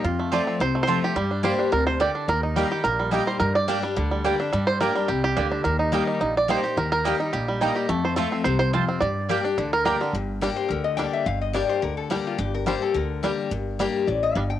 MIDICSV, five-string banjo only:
0, 0, Header, 1, 2, 480
1, 0, Start_track
1, 0, Key_signature, -2, "minor"
1, 0, Tempo, 280767
1, 67, Time_signature, 4, 2, 24, 8
1, 24952, End_track
2, 0, Start_track
2, 0, Title_t, "Five-string banjo"
2, 0, Program_c, 0, 105
2, 76, Note_on_c, 0, 65, 60
2, 330, Note_on_c, 0, 57, 59
2, 561, Note_off_c, 0, 65, 0
2, 567, Note_on_c, 0, 74, 95
2, 807, Note_on_c, 0, 60, 55
2, 986, Note_off_c, 0, 57, 0
2, 1038, Note_off_c, 0, 74, 0
2, 1045, Note_on_c, 0, 72, 102
2, 1282, Note_on_c, 0, 57, 63
2, 1398, Note_off_c, 0, 72, 0
2, 1418, Note_on_c, 0, 72, 104
2, 1464, Note_off_c, 0, 60, 0
2, 1506, Note_on_c, 0, 60, 55
2, 1781, Note_on_c, 0, 67, 86
2, 1785, Note_off_c, 0, 72, 0
2, 1941, Note_off_c, 0, 57, 0
2, 1986, Note_off_c, 0, 60, 0
2, 1987, Note_on_c, 0, 55, 79
2, 2219, Note_off_c, 0, 67, 0
2, 2240, Note_on_c, 0, 62, 52
2, 2461, Note_off_c, 0, 62, 0
2, 2468, Note_on_c, 0, 72, 100
2, 2718, Note_on_c, 0, 62, 61
2, 2942, Note_off_c, 0, 72, 0
2, 2948, Note_on_c, 0, 70, 99
2, 3184, Note_off_c, 0, 70, 0
2, 3191, Note_on_c, 0, 72, 103
2, 3379, Note_off_c, 0, 62, 0
2, 3404, Note_off_c, 0, 72, 0
2, 3435, Note_on_c, 0, 74, 100
2, 3675, Note_on_c, 0, 62, 58
2, 3877, Note_off_c, 0, 74, 0
2, 3902, Note_off_c, 0, 62, 0
2, 3914, Note_on_c, 0, 70, 92
2, 4152, Note_off_c, 0, 70, 0
2, 4159, Note_on_c, 0, 63, 58
2, 4374, Note_off_c, 0, 55, 0
2, 4381, Note_on_c, 0, 55, 56
2, 4644, Note_on_c, 0, 67, 85
2, 4819, Note_off_c, 0, 63, 0
2, 4850, Note_off_c, 0, 67, 0
2, 4851, Note_on_c, 0, 70, 99
2, 5112, Note_off_c, 0, 55, 0
2, 5119, Note_on_c, 0, 55, 61
2, 5333, Note_off_c, 0, 70, 0
2, 5340, Note_on_c, 0, 63, 56
2, 5595, Note_on_c, 0, 72, 86
2, 5799, Note_off_c, 0, 72, 0
2, 5806, Note_on_c, 0, 70, 95
2, 5821, Note_off_c, 0, 63, 0
2, 6067, Note_off_c, 0, 70, 0
2, 6074, Note_on_c, 0, 74, 100
2, 6297, Note_on_c, 0, 62, 56
2, 6548, Note_off_c, 0, 55, 0
2, 6555, Note_on_c, 0, 55, 71
2, 6730, Note_off_c, 0, 74, 0
2, 6766, Note_off_c, 0, 62, 0
2, 6786, Note_on_c, 0, 62, 64
2, 7026, Note_off_c, 0, 55, 0
2, 7033, Note_on_c, 0, 55, 68
2, 7238, Note_off_c, 0, 62, 0
2, 7259, Note_on_c, 0, 62, 54
2, 7498, Note_off_c, 0, 62, 0
2, 7519, Note_on_c, 0, 62, 62
2, 7731, Note_off_c, 0, 55, 0
2, 7738, Note_on_c, 0, 55, 76
2, 7977, Note_off_c, 0, 62, 0
2, 7984, Note_on_c, 0, 72, 104
2, 8198, Note_off_c, 0, 72, 0
2, 8218, Note_on_c, 0, 70, 97
2, 8464, Note_off_c, 0, 55, 0
2, 8471, Note_on_c, 0, 55, 65
2, 8689, Note_on_c, 0, 67, 85
2, 8713, Note_off_c, 0, 70, 0
2, 8939, Note_off_c, 0, 67, 0
2, 8959, Note_on_c, 0, 67, 100
2, 9174, Note_on_c, 0, 62, 58
2, 9410, Note_off_c, 0, 62, 0
2, 9430, Note_on_c, 0, 62, 62
2, 9612, Note_off_c, 0, 67, 0
2, 9638, Note_off_c, 0, 62, 0
2, 9645, Note_on_c, 0, 70, 80
2, 9897, Note_off_c, 0, 70, 0
2, 9904, Note_on_c, 0, 63, 63
2, 10121, Note_off_c, 0, 55, 0
2, 10127, Note_on_c, 0, 55, 56
2, 10364, Note_off_c, 0, 63, 0
2, 10384, Note_on_c, 0, 63, 54
2, 10593, Note_off_c, 0, 63, 0
2, 10614, Note_on_c, 0, 63, 62
2, 10818, Note_off_c, 0, 55, 0
2, 10888, Note_off_c, 0, 63, 0
2, 10895, Note_on_c, 0, 74, 104
2, 11111, Note_off_c, 0, 74, 0
2, 11118, Note_on_c, 0, 72, 103
2, 11347, Note_on_c, 0, 67, 62
2, 11581, Note_on_c, 0, 70, 99
2, 11602, Note_off_c, 0, 72, 0
2, 11807, Note_off_c, 0, 70, 0
2, 11828, Note_on_c, 0, 70, 108
2, 12009, Note_off_c, 0, 67, 0
2, 12055, Note_on_c, 0, 55, 53
2, 12296, Note_off_c, 0, 70, 0
2, 12303, Note_on_c, 0, 63, 58
2, 12527, Note_on_c, 0, 67, 79
2, 12742, Note_off_c, 0, 55, 0
2, 12793, Note_on_c, 0, 55, 69
2, 12968, Note_off_c, 0, 63, 0
2, 12979, Note_off_c, 0, 67, 0
2, 13014, Note_on_c, 0, 63, 65
2, 13259, Note_on_c, 0, 67, 64
2, 13453, Note_off_c, 0, 55, 0
2, 13486, Note_on_c, 0, 57, 89
2, 13491, Note_off_c, 0, 67, 0
2, 13496, Note_off_c, 0, 63, 0
2, 13755, Note_on_c, 0, 72, 85
2, 13948, Note_off_c, 0, 72, 0
2, 13955, Note_on_c, 0, 69, 79
2, 14177, Note_off_c, 0, 57, 0
2, 14224, Note_on_c, 0, 60, 55
2, 14426, Note_off_c, 0, 69, 0
2, 14433, Note_on_c, 0, 72, 97
2, 14666, Note_off_c, 0, 72, 0
2, 14686, Note_on_c, 0, 72, 107
2, 14888, Note_off_c, 0, 60, 0
2, 14928, Note_off_c, 0, 72, 0
2, 14935, Note_on_c, 0, 65, 53
2, 15188, Note_on_c, 0, 60, 63
2, 15386, Note_off_c, 0, 65, 0
2, 15393, Note_on_c, 0, 74, 110
2, 15415, Note_off_c, 0, 60, 0
2, 15852, Note_off_c, 0, 74, 0
2, 15893, Note_on_c, 0, 67, 58
2, 16144, Note_on_c, 0, 62, 58
2, 16352, Note_off_c, 0, 62, 0
2, 16372, Note_on_c, 0, 62, 63
2, 16581, Note_off_c, 0, 67, 0
2, 16627, Note_off_c, 0, 62, 0
2, 16634, Note_on_c, 0, 70, 111
2, 16828, Note_off_c, 0, 70, 0
2, 16849, Note_on_c, 0, 70, 107
2, 17114, Note_on_c, 0, 50, 64
2, 17301, Note_off_c, 0, 70, 0
2, 17339, Note_off_c, 0, 50, 0
2, 17820, Note_on_c, 0, 55, 64
2, 17831, Note_on_c, 0, 62, 69
2, 17865, Note_off_c, 0, 62, 0
2, 17934, Note_off_c, 0, 55, 0
2, 18785, Note_on_c, 0, 55, 62
2, 18795, Note_on_c, 0, 62, 64
2, 18829, Note_off_c, 0, 62, 0
2, 18897, Note_off_c, 0, 55, 0
2, 19740, Note_on_c, 0, 55, 66
2, 19753, Note_on_c, 0, 62, 69
2, 19787, Note_off_c, 0, 62, 0
2, 19856, Note_off_c, 0, 55, 0
2, 20702, Note_on_c, 0, 55, 65
2, 20712, Note_on_c, 0, 62, 65
2, 20746, Note_off_c, 0, 62, 0
2, 20817, Note_off_c, 0, 55, 0
2, 21654, Note_on_c, 0, 55, 62
2, 21668, Note_on_c, 0, 62, 65
2, 21702, Note_off_c, 0, 62, 0
2, 21775, Note_off_c, 0, 55, 0
2, 22631, Note_on_c, 0, 55, 70
2, 22639, Note_on_c, 0, 62, 63
2, 22673, Note_off_c, 0, 62, 0
2, 22742, Note_off_c, 0, 55, 0
2, 23589, Note_on_c, 0, 55, 64
2, 23603, Note_on_c, 0, 62, 59
2, 23638, Note_off_c, 0, 62, 0
2, 23703, Note_off_c, 0, 55, 0
2, 24556, Note_on_c, 0, 55, 61
2, 24566, Note_on_c, 0, 62, 61
2, 24600, Note_off_c, 0, 62, 0
2, 24666, Note_off_c, 0, 55, 0
2, 24952, End_track
0, 0, End_of_file